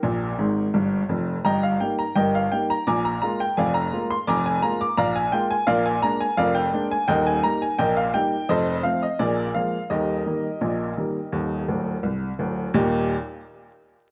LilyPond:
<<
  \new Staff \with { instrumentName = "Upright piano" } { \time 2/4 \key ees \major \tempo 4 = 85 <g' bes'>4. r8 | <ees'' g'' bes''>16 f''16 g''16 bes''16 <bes' ees'' g''>16 f''16 g''16 bes''16 | <aes'' bes'' d'''>16 bes''16 bes''16 g''16 <d'' f'' aes''>16 bes''8 c'''16 | <aes'' bes'' d'''>16 aes''16 bes''16 d'''16 <d'' f'' bes''>16 aes''16 g''16 aes''16 |
<bes' d'' f''>16 aes''16 bes''16 aes''16 <bes' d'' f''>16 g''8 aes''16 | <bes' ees'' g''>16 aes''16 bes''16 aes''16 <bes' ees'' g''>16 f''16 g''8 | <a' c'' ees''>8 f''16 ees''16 <aes' bes' d''>8 f''8 | <g' bes' ees''>2~ |
<g' bes' ees''>4 r4 | <ees, bes, g bes ees' g'>8 r4. | }
  \new Staff \with { instrumentName = "Upright piano" } { \clef bass \time 2/4 \key ees \major <bes,, bes,>8 <aes,, aes,>8 <g,, g,>8 <f,, f,>8 | <g,, g,>8 <g bes ees'>8 <g,, g,>8 <g bes ees'>8 | <bes,, bes,>8 <aes bes f'>8 <f,, f,>8 <aes bes f'>8 | <f,, f,>8 <aes bes f'>8 <bes,, bes,>8 <aes bes f'>8 |
<bes,, bes,>8 <aes bes d'>8 <f,, f,>8 <aes bes d'>8 | <ees,, ees,>8 <g bes ees'>8 <bes,, bes,>8 <g bes ees'>8 | <f,, f,>8 <f a c'>8 <bes,, bes,>8 <f aes bes>8 | <ees,, ees,>8 <ees g bes>8 <bes,, bes,>8 <ees g bes>8 |
<ees,, ees,>8 <d,, d,>8 c,8 <d,, d,>8 | r2 | }
>>